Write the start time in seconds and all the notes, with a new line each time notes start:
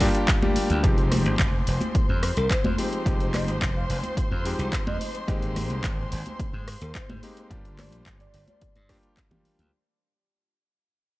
Already playing: G4 G5
0.00 G3 A#3 D4 F4 G4, kick, open hi-hat
0.15 closed hi-hat
0.28 kick, clap, closed hi-hat
0.42 G3 A#3 D4 F4 G4, high conga
0.56 muted slap bass stroke, open hi-hat
0.70 D2, closed hi-hat
0.83 F1 F3 G#3 C4 D#4 G4 C5 C6, kick, closed hi-hat
0.98 closed hi-hat
1.12 cross-stick, open hi-hat, high conga
1.26 G#1, closed hi-hat
1.39 F1, kick, clap, closed hi-hat
1.67 F1, open hi-hat
1.81 closed hi-hat, high conga
1.95 muted slap bass stroke, kick, closed hi-hat
2.09 F2
2.23 cross-stick, open hi-hat
2.37 C2 A#4, closed hi-hat
2.50 kick, clap, closed hi-hat
2.64 F2, high conga
2.78 F3 G#3 C4 D#4 G4, open hi-hat
2.93 closed hi-hat
3.05 F1 F3 G#3 C4 D#4 G4, kick, closed hi-hat
3.20 closed hi-hat
3.34 D#5, cross-stick, clap, open hi-hat, high conga
3.48 G#1, closed hi-hat
3.62 kick, clap, closed hi-hat
3.76 F5
3.90 F1 F5, open hi-hat
4.03 closed hi-hat, high conga
4.17 kick, closed hi-hat
4.31 F2
4.44 F3 G#3 C4 D#4 G4, open hi-hat
4.59 C2, closed hi-hat
4.73 kick, clap, closed hi-hat
4.87 F2 D#5, high conga
5.01 open hi-hat
5.15 closed hi-hat
5.28 G#1 G#3 A#3 C4 D#4 G4, kick, closed hi-hat
5.43 closed hi-hat
5.56 cross-stick, open hi-hat, high conga
5.70 C2, closed hi-hat
5.84 G#1, kick, clap, closed hi-hat
6.12 G#1, open hi-hat
6.26 closed hi-hat, high conga
6.40 muted slap bass stroke, kick, closed hi-hat
6.53 G#2
6.68 cross-stick, open hi-hat
6.81 D#2 A#4, closed hi-hat
6.95 C5, kick, clap, closed hi-hat
7.09 G#2, high conga
7.23 G#3 A#3 C4 D#4 G4, open hi-hat
7.37 closed hi-hat
7.50 G1 G3 A#3 D4 F4 G4, kick, closed hi-hat
7.65 closed hi-hat
7.78 D5, cross-stick, clap, open hi-hat, high conga
7.92 A#1, closed hi-hat
8.06 G1, kick, clap, closed hi-hat
8.20 D5, closed hi-hat
8.34 G1, open hi-hat
8.48 D5, closed hi-hat, high conga
8.62 kick, closed hi-hat
8.76 G2, closed hi-hat
8.89 G3 A#3 D4 F4 G4, kick, cross-stick, open hi-hat
9.03 closed hi-hat
9.17 kick, clap, closed hi-hat
9.31 G3 A#3 D4 F4 G4, closed hi-hat, high conga, low conga
9.45 muted slap bass stroke, open hi-hat
9.59 D2, closed hi-hat